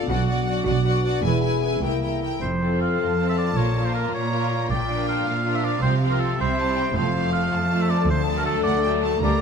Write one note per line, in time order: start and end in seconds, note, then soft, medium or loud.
0.00 0.12 A2 soft
0.00 0.12 A3 soft
0.00 1.04 D4 soft
0.00 1.25 D4 soft
0.00 0.10 F4 soft
0.00 0.11 F4 soft
0.00 0.10 A4 soft
0.00 0.12 A4 soft
0.00 0.10 D5 soft
0.00 0.66 D5 soft
0.09 0.58 B1 medium
0.09 0.57 B2 medium
0.09 1.26 B2 medium
0.09 0.28 F#4 medium
0.09 1.22 F#4 soft
0.09 0.28 D5 medium
0.09 0.26 F#5 soft
0.27 1.26 F#3 soft
0.27 0.46 F#4 soft
0.27 0.48 D5 soft
0.27 0.43 F#5 soft
0.45 1.26 F#4 soft
0.45 0.65 F#4 soft
0.45 0.64 F#5 soft
0.49 0.67 D5 medium
0.65 1.15 B1 medium
0.65 1.15 B2 medium
0.65 0.84 F#4 soft
0.65 1.26 D5 medium
0.65 0.86 D5 soft
0.65 0.84 F#5 medium
0.85 1.03 F#4 medium
0.85 1.62 B4 soft
0.85 1.04 D5 medium
0.85 1.03 F#5 medium
1.05 1.26 D4 soft
1.05 1.24 F#4 medium
1.05 1.24 D5 medium
1.05 1.24 F#5 medium
1.23 1.73 E1 medium
1.23 1.73 E2 medium
1.23 1.85 E3 medium
1.23 1.83 B3 medium
1.23 1.43 E4 medium
1.23 1.84 G#4 medium
1.23 1.45 B4 medium
1.23 1.42 G#5 medium
1.43 2.00 E4 soft
1.43 1.63 E4 soft
1.43 1.64 B4 soft
1.43 1.61 G#5 soft
1.62 1.82 E4 soft
1.62 1.84 G#4 soft
1.62 1.84 B4 soft
1.62 1.82 G#5 soft
1.66 1.84 B4 soft
1.82 2.32 C2 medium
1.82 2.32 C2 soft
1.82 2.43 C3 soft
1.82 2.23 A#3 soft
1.82 2.01 E4 soft
1.82 2.23 E4 soft
1.82 2.03 A#4 soft
1.82 2.01 G5 soft
2.02 2.43 E4 soft
2.02 2.20 E4 soft
2.02 2.23 A#4 soft
2.02 2.21 G5 soft
2.21 2.41 E4 soft
2.21 2.44 G4 soft
2.21 2.44 A#4 soft
2.21 2.43 A#4 soft
2.21 2.42 G5 soft
2.41 2.78 F1 soft
2.41 2.92 F2 soft
2.41 3.58 F2 soft
2.41 2.77 C5 soft
2.60 3.17 C4 soft
2.60 3.58 C4 soft
2.60 3.17 F4 soft
2.60 3.18 A4 soft
2.81 3.58 A4 soft
2.81 3.28 F5 medium
3.00 3.50 F2 soft
3.00 4.13 F5 soft
3.00 4.09 A5 soft
3.18 3.56 C4 soft
3.18 3.54 F4 soft
3.18 3.56 A4 soft
3.18 3.58 C5 soft
3.29 3.33 E5 soft
3.37 4.50 F4 soft
3.37 3.58 D5 soft
3.56 3.91 A#1 soft
3.56 4.69 A#2 soft
3.56 4.07 A#2 soft
3.56 3.75 A#3 soft
3.56 3.75 F4 soft
3.56 3.74 F4 soft
3.56 3.74 A#4 soft
3.56 3.87 C#5 medium
3.75 4.31 A#3 soft
3.75 4.72 C#4 soft
3.75 4.30 F4 soft
3.75 4.32 F4 soft
3.75 4.29 A#4 soft
3.85 3.93 C5 soft
3.94 4.13 A#4 soft
3.94 5.07 A#4 soft
4.13 4.63 A#2 soft
4.13 4.69 C#5 medium
4.13 5.26 F5 soft
4.13 4.70 A#5 soft
4.31 4.69 A#3 soft
4.31 4.69 F4 soft
4.31 4.70 F4 soft
4.31 4.69 A#4 soft
4.31 4.72 C#5 soft
4.51 5.64 F4 soft
4.70 5.05 A#1 soft
4.70 5.85 A#2 soft
4.70 5.21 A#2 soft
4.70 5.07 D5 medium
4.70 5.26 G5 medium
4.88 5.44 F3 soft
4.88 5.43 D4 soft
4.88 5.84 D4 soft
4.88 5.44 F4 soft
4.88 5.44 A#4 soft
5.08 5.85 A#4 soft
5.08 5.57 F5 medium
5.27 5.77 A#2 soft
5.27 6.41 F5 soft
5.27 6.40 F5 soft
5.45 5.81 F3 soft
5.45 5.82 D4 soft
5.45 5.81 F4 soft
5.45 5.82 A#4 soft
5.45 5.85 D5 soft
5.55 5.66 E5 medium
5.64 6.20 F4 soft
5.64 5.82 D5 medium
5.82 6.18 C2 soft
5.82 6.33 C3 soft
5.82 6.39 C3 soft
5.82 6.01 F3 soft
5.82 6.01 C4 soft
5.82 6.01 F4 soft
5.82 6.01 G4 soft
5.82 5.95 C5 medium
6.02 6.39 F3 soft
6.02 6.59 C4 soft
6.02 6.37 C4 soft
6.02 6.39 F4 soft
6.02 6.39 G4 soft
6.11 6.21 A#4 medium
6.20 6.41 F4 soft
6.20 6.77 G4 soft
6.20 6.39 A4 medium
6.38 6.75 C2 soft
6.38 6.89 C3 soft
6.38 6.98 C3 soft
6.38 6.57 G3 soft
6.38 6.57 C4 soft
6.38 6.57 E4 soft
6.38 6.57 G4 soft
6.38 6.95 C5 medium
6.38 6.57 E5 soft
6.58 6.95 G3 soft
6.58 6.95 C4 soft
6.58 8.11 C4 soft
6.58 6.95 E4 soft
6.58 6.95 G4 soft
6.58 6.77 A5 medium
6.77 6.98 E4 soft
6.77 6.98 G4 soft
6.77 6.96 G5 soft
6.95 7.30 F1 medium
6.95 7.46 F2 medium
6.95 7.14 F3 soft
6.95 8.10 F3 soft
6.95 7.14 A3 soft
6.95 7.12 C4 soft
6.95 7.12 A4 soft
6.95 7.32 C5 medium
6.95 7.52 F5 medium
7.13 7.69 F3 soft
7.13 7.70 A3 soft
7.13 7.69 C4 soft
7.13 8.10 F4 soft
7.13 7.69 A4 soft
7.33 8.10 C5 soft
7.33 7.82 F5 medium
7.53 8.02 F2 medium
7.53 8.07 A5 medium
7.53 9.24 A5 soft
7.70 8.08 F3 soft
7.70 8.08 A3 soft
7.70 8.08 C4 soft
7.70 8.08 A4 soft
7.70 8.11 F5 soft
7.81 7.91 E5 medium
7.90 8.45 A4 soft
7.90 8.09 D5 medium
8.08 8.44 D2 medium
8.08 8.59 D2 medium
8.08 9.22 D3 medium
8.08 8.23 C5 medium
8.08 8.64 A5 medium
8.25 8.84 F#3 soft
8.25 8.84 A3 medium
8.25 8.82 D4 medium
8.25 9.41 D4 soft
8.25 8.82 A4 soft
8.37 8.45 A#4 medium
8.45 8.63 A4 medium
8.45 9.24 A4 soft
8.63 9.16 D2 medium
8.63 9.01 D5 medium
8.63 8.83 F#5 medium
8.63 9.24 F#5 soft
8.83 9.22 F#3 soft
8.83 9.22 A3 soft
8.83 9.22 D4 soft
8.83 9.22 A4 medium
8.83 9.41 D5 soft
8.83 8.91 G5 medium
9.03 9.24 F#4 soft
9.03 9.22 A5 medium
9.21 9.41 D2 medium
9.21 9.41 D3 medium
9.21 9.39 G3 soft
9.21 9.38 A#3 soft
9.21 9.41 D4 soft
9.21 9.41 G4 soft
9.21 9.41 D5 medium
9.21 9.41 A#5 medium